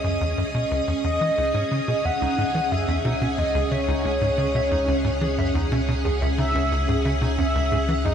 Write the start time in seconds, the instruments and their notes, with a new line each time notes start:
Already playing: sub bass C#2, string machine C#4 G#4 D#6, soft synth lead D#5
0.04 analog synth bass F#2
0.21 analog synth bass E2
0.38 analog synth bass F#2
0.54 analog synth bass B2
0.71 analog synth bass C#2
0.88 analog synth bass E2
1.04 analog synth bass E2, soft synth lead D#5
1.21 analog synth bass E3
1.38 analog synth bass C#2, sub bass C#2, clean electric guitar D#4
1.54 analog synth bass G#2, clean electric guitar C#4
1.71 analog synth bass C#3
1.88 analog synth bass B2, clean electric guitar G#4
2.05 analog synth bass E2, clean electric guitar E5, soft synth lead F#5
2.21 analog synth bass C#2, clean electric guitar D#4
2.38 analog synth bass G#2, clean electric guitar C#4
2.55 analog synth bass E3
2.72 analog synth bass F#2, clean electric guitar G#4, soft synth lead E5
2.88 analog synth bass E2, clean electric guitar E5
3.05 analog synth bass B2, clean electric guitar D#4
3.22 analog synth bass B2, clean electric guitar C#4
3.38 analog synth bass E2, soft synth lead D#5
3.55 analog synth bass C#2, clean electric guitar G#4
3.71 analog synth bass C#3, soft synth lead C#5, clean electric guitar E5
3.87 analog synth bass C#2, clean electric guitar D#4, string machine F#5
4.05 analog synth bass C#2, clean electric guitar C#4
4.21 analog synth bass G#2
4.38 analog synth bass C#3, clean electric guitar G#4
4.55 analog synth bass B2, clean electric guitar E5
4.71 analog synth bass E2, clean electric guitar D#4
4.88 analog synth bass C#2, clean electric guitar C#4
5.04 analog synth bass G#2
5.21 analog synth bass E3, clean electric guitar G#4
5.38 analog synth bass F#2, clean electric guitar E5
5.55 analog synth bass E2, clean electric guitar D#4
5.71 analog synth bass B2, clean electric guitar C#4
5.88 analog synth bass B2
6.05 analog synth bass E2, clean electric guitar G#4
6.21 analog synth bass C#2, clean electric guitar E5
6.38 analog synth bass C#3, clean electric guitar D#4, soft synth lead E5
6.55 analog synth bass C#2, clean electric guitar C#4
6.72 analog synth bass C#2
6.88 analog synth bass G#2, clean electric guitar G#4
7.05 analog synth bass C#3, clean electric guitar E5
7.21 analog synth bass B2, clean electric guitar D#4
7.38 analog synth bass E2, clean electric guitar C#4, soft synth lead E5
7.55 analog synth bass C#2
7.72 analog synth bass G#2, clean electric guitar G#4
7.88 analog synth bass E3, clean electric guitar E5
8.05 analog synth bass F#2, clean electric guitar D#4, soft synth lead D#5